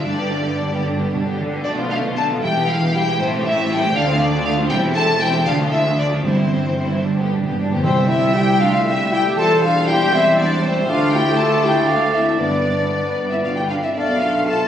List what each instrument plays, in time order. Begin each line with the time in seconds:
0.02 double bass section G1, cello section G2, viola section D3 G3, violin section D4 D5, french horn section D4
0.16 viola section D3 G3, violin section B3 G4
0.29 viola section D3 G3, violin section D4
0.43 viola section D3 G3, violin section B3 G4
0.58 viola section D3 G3, violin section D4
0.71 viola section D3 G3, violin section B3 G4
0.84 cello section G2, viola section D3 G3, violin section D4
0.98 viola section D3 G3, violin section B3 G4
1.12 cello section B2, viola section D3 G3, violin section D4
1.25 viola section D3 G3, violin section B3 G4
1.38 cello section D3, viola section D3 G3, violin section D4
1.51 viola section D3 G3, violin section B3 G4
1.64 double bass section B1, cello section B2, viola section D3 A3, violin section A3 D4 D5, french horn section D4
1.77 viola section F3 B3, violin section B3 F4
1.89 viola section D3 A3, violin section A3 D4 F5, french horn section F4
2.02 viola section F3 B3, violin section B3 F4
2.16 viola section D3 A3, violin section A3 D4 A5, french horn section A4
2.29 viola section F3 B3, violin section B3 F4
2.41 double bass section E1, cello section E2, viola section G3, violin section E4 G5, french horn section G4
2.54 viola section E3, violin section B3 G4
2.66 viola section G3, violin section E4 F5, french horn section F4
2.80 viola section E3, violin section B3 G4
2.93 viola section G3, violin section E4 G5, french horn section G4
3.06 viola section E3, violin section B3 G4
3.18 double bass section A1, cello section A2, viola section G3 A3, violin section A3 E4 C5, french horn section C4
3.31 viola section E3 A3, violin section C4 G4
3.44 viola section G3 A3, violin section A3 E4 E5, french horn section E4
3.57 viola section E3 A3, violin section C4 G4
3.70 viola section G3 A3, violin section A3 E4 G5, french horn section G4
3.81 viola section E3 A3, violin section C4 G4
3.94 cello section D2, double bass section D2, viola section D3 A3, violin section D4 F5, french horn section F4
4.07 viola section F3 C4, violin section C4 F4
4.19 viola section D3 A3, violin section D4 D5, french horn section D4
4.32 viola section F3 C4, violin section C4 F4
4.45 viola section D3 A3, violin section D4 F5, french horn section F4
4.57 viola section F3 C4, violin section C4 F4
4.70 double bass section E1, cello section E2, viola section G3, violin section C4 E4 G5, french horn section G4
4.83 viola section E3, violin section C4 E4
4.94 viola section G3, violin section C4 E4 A5, french horn section A4
5.07 viola section E3, violin section C4 E4
5.19 viola section G3, violin section C4 E4 G5, french horn section G4
5.33 viola section E3, violin section C4 E4
5.44 double bass section D2, cello section D2, viola section D3 A3, violin section D4 F5, french horn section F4
5.58 viola section F3, violin section A3 F4
5.68 viola section D3 A3, french horn section E4, violin section E5
5.73 violin section D4
5.84 viola section F3, violin section A3 F4
5.93 viola section D3 A3, french horn section D4
5.98 violin section D4 D5
6.10 viola section F3, violin section A3 F4
6.19 timpani G2, french horn section C4
6.24 double bass section G1, cello section G2, viola section G3, violin section C4 E4 C5
6.37 viola section E3, violin section C4 E4
6.51 viola section G3, violin section C4 E4
6.64 viola section E3, violin section C4 E4
6.77 viola section G3, violin section C4 E4
6.91 viola section E3, violin section C4 E4
7.04 timpani G2, viola section G3, violin section D4
7.12 timpani G2
7.17 timpani G2, viola section D3 B3, violin section B3 G4
7.30 viola section G3, violin section D4
7.36 timpani G2
7.44 timpani G2, viola section D3 B3, violin section B3 G4
7.51 timpani G2
7.58 timpani G2, viola section G3, violin section D4
7.67 timpani G2
7.71 timpani G2, viola section D3 B3, violin section B3 G4
7.82 double bass section C2, cello section C2, timpani C3, bassoon G3, clarinet G3, viola section G3, french horn section C4, flute C5, violin section C5 G5, oboe E5
7.97 violin section E5
8.08 clarinet C4, french horn section E4, flute E5, violin section E5 G5
8.22 violin section E5
8.34 clarinet E4, french horn section G4, violin section G5, flute G5
8.48 violin section E5
8.60 viola section A3, clarinet D4, french horn section F4, flute F5, violin section F5 G5
8.73 violin section E5
8.85 clarinet C4, french horn section E4, flute E5, violin section E5 G5
8.98 violin section E5
9.11 clarinet E4, french horn section G4, flute G5, violin section G5
9.24 violin section E5
9.37 double bass section E1, cello section E2, viola section G3, clarinet F4, french horn section A4, oboe C5, violin section E5 A5, flute A5
9.50 violin section C5
9.62 clarinet D4, french horn section F4, violin section E5 F5, flute F5
9.77 violin section C5
9.87 clarinet E4, french horn section G4, flute G5, violin section G5
9.91 violin section E5
10.02 violin section C5
10.13 clarinet C4, french horn section E4, flute E5, violin section E5
10.28 violin section C5
10.38 clarinet B3, french horn section D4, flute D5, violin section D5 E5
10.52 violin section C5
10.63 clarinet A3, french horn section C4, violin section C5 E5, flute C5
10.77 violin section C5
10.88 double bass section D2, cello section D2, bassoon A3, viola section A3, clarinet D4, french horn section F4, violin section F4 F5, oboe D5, flute F5
11.01 violin section A4
11.12 clarinet E4, violin section F4 G5, french horn section G4, flute G5
11.26 violin section A4
11.38 clarinet F4, violin section F4 A5, french horn section A4, flute A5
11.52 violin section A4
11.63 clarinet E4, violin section F4 G5, french horn section G4, flute G5
11.77 violin section A4
11.87 clarinet D4, french horn section F4, violin section F4 F5, flute F5
12.02 violin section A4
12.13 clarinet C4, french horn section E4, violin section F4 E5, flute E5
12.29 violin section A4
12.38 double bass section G1, timpani G2, cello section G2, bassoon B3, viola section B3, clarinet B3, french horn section D4, flute D5, violin section D5, oboe D5
12.53 violin section B4
12.66 violin section D5
12.79 violin section B4
12.92 violin section D5
13.06 violin section B4
13.18 cello section G2, violin section D5
13.28 clarinet C4, french horn section E4, violin section B4 E5, flute E5
13.42 cello section B2, clarinet D4, french horn section F4, violin section D5 F5, flute F5
13.55 clarinet E4, french horn section G4, violin section B4 G5, flute G5
13.69 cello section D3, clarinet D4, french horn section F4, violin section D5 F5, flute F5
13.82 clarinet C4, french horn section E4, violin section B4 E5, flute E5
13.95 double bass section B1, cello section B2, bassoon A3, clarinet B3, french horn section D4, violin section A4 D5, flute D5, oboe F5
14.10 violin section B4
14.21 clarinet D4, french horn section F4, violin section A4 F5, flute F5
14.38 violin section B4
14.46 clarinet F4, french horn section A4, violin section A4 A5, flute A5
14.64 violin section B4